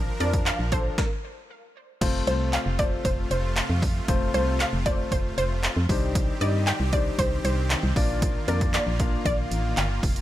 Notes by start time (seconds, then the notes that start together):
Already playing: A#1 F3 D4 A#4
0.20 F2 F3 D4 A#4 D5, closed hi-hat
0.33 kick, closed hi-hat
0.46 F5, clap, closed hi-hat
0.59 A#1
0.72 F3 D4 A4 C5, kick, closed hi-hat
0.98 A#4, kick, snare
2.01 F1 C3 A3 C4 F4 C5, kick, closed hi-hat, crash
2.27 C2 A3 C4 F4 C5, closed hi-hat
2.53 F5, clap, closed hi-hat
2.66 F1
2.79 A3 C4 F4 C5 D5, kick, closed hi-hat
3.05 F1 C5, kick, closed hi-hat
3.31 F1 C5, closed hi-hat
3.56 clap, closed hi-hat
3.70 F2
3.82 kick, open hi-hat
4.08 F1 A3 C4 F4 C5, kick, closed hi-hat
4.34 C2 A3 C4 F4 C5, closed hi-hat
4.60 F5, clap, closed hi-hat
4.73 F1
4.86 A3 C4 F4 C5 D5, kick, closed hi-hat
5.12 F1 C5, kick, closed hi-hat
5.38 F1 C5, closed hi-hat
5.63 clap, closed hi-hat
5.77 F2
5.89 C2 D#3 G3 C4 D4 D#4 G4 C5, kick, open hi-hat
6.15 kick, closed hi-hat
6.41 G2 G3 D#4 D5 D#5, closed hi-hat
6.67 G5, clap, closed hi-hat
6.80 C2
6.93 G3 D4 D#4 C5 D5, kick, closed hi-hat
7.19 C2 C5, kick, closed hi-hat
7.45 C2 C5, closed hi-hat
7.70 clap, closed hi-hat
7.83 C2
7.96 A#1 A#3 D4 F4 D5, kick, open hi-hat
8.22 kick, closed hi-hat
8.48 F2 A#3 D4 F4 A#4 D5, closed hi-hat
8.61 kick, closed hi-hat
8.74 D5, clap, closed hi-hat
8.87 A#1
8.99 A#3 D4 F4 F5, kick, closed hi-hat
9.25 A#1 D5, kick, closed hi-hat
9.51 A1, closed hi-hat
9.77 G1 F5, clap, closed hi-hat
10.03 F1, kick, open hi-hat
10.16 closed hi-hat